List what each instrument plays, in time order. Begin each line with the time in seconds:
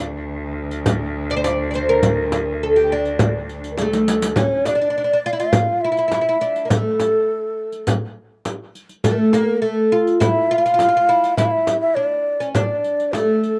Already playing: cello D2, oud D5
0.71 riq
0.86 riq, frame drum
1.30 oud D5, riq
1.37 oud C5
1.44 oud D5, riq, frame drum
1.71 oud D5, riq
1.75 oud C5
1.89 oud A#4
2.03 riq, frame drum
2.32 riq, frame drum
2.63 oud A4
2.76 oud G4
2.92 oud D4
3.05 riq
3.19 riq, frame drum
3.49 riq
3.64 riq
3.72 ney A#4
3.78 oud A3, ney G#4, riq, frame drum
3.89 ney A4, riq
4.08 riq
4.22 riq
4.36 oud C#4, ney C#5, riq, frame drum
4.65 oud D4, ney D5 D#5, riq, frame drum
4.75 oud D4
4.82 oud D4
4.90 oud D4
4.98 oud D4
5.04 oud D4
5.13 oud D4
5.26 oud F4
5.33 oud E4
5.37 oud F4, ney F5, riq
5.53 riq, frame drum
5.81 oud E4, ney E5
5.92 oud E4
5.97 oud E4, riq
6.08 oud E4, riq, frame drum
6.14 oud E4
6.21 oud E4
6.29 oud E4
6.41 oud D4, riq
6.56 riq
6.65 oud A#3
6.70 oud A3, ney A#4, riq, frame drum
6.75 ney A4
7.00 riq, frame drum
7.72 riq
7.87 riq, frame drum
8.45 riq, frame drum
8.75 riq
8.89 riq
9.04 oud A3, ney A4, riq, frame drum
9.12 ney A#4
9.19 ney A4
9.33 oud A#3, ney A#4, riq, frame drum
9.57 ney A#4
9.62 oud A3, ney A4
9.92 oud F4
10.07 riq
10.20 oud E4, ney F5, riq, frame drum
10.27 ney E5
10.51 oud F4, ney F5
10.58 oud F4
10.66 oud F4, riq
10.74 oud F4
10.79 oud F4, riq, frame drum
10.89 oud F4
10.97 oud F4
11.09 oud E4, riq
11.24 riq
11.37 oud E4, ney E5, riq, frame drum
11.45 ney F5
11.51 ney E5
11.67 riq, frame drum
11.81 ney E5
11.95 oud D4, ney D5
12.40 oud C#4, riq
12.54 oud D4, ney D5, riq, frame drum
12.84 riq
13.00 riq
13.12 oud A3, ney A#4, riq, frame drum
13.16 ney A4
13.43 riq